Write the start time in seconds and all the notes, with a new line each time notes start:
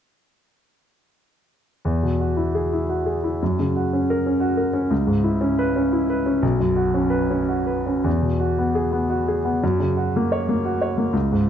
1.85 E2
2.03 B2
2.20 F#4
2.37 E4
2.55 G#4
2.73 E4
2.89 F#4
3.06 G#4
3.24 E4
3.43 F#2
3.59 C#3
3.76 F#4
3.93 C#4
4.10 A#4
4.26 C#4
4.40 F#4
4.57 A#4
4.73 C#4
4.91 C#2
5.07 G#2
5.24 E4
5.41 C#4
5.59 B4
5.76 C#4
5.93 E4
6.10 B4
6.26 C#4
6.42 B1
6.60 F#2
6.76 F#4
6.94 C#4
7.10 B4
7.30 C#4
7.49 F#4
7.66 B4
7.86 C#4
8.04 E2
8.22 B2
8.40 F#4
8.59 B3
8.75 G#4
8.92 B3
9.10 F#4
9.28 G#4
9.45 B3
9.63 F#2
9.80 C#3
9.97 F#4
10.16 A#3
10.32 C#5
10.49 A#3
10.65 F#4
10.82 C#5
10.98 A#3
11.13 C#2
11.32 G#2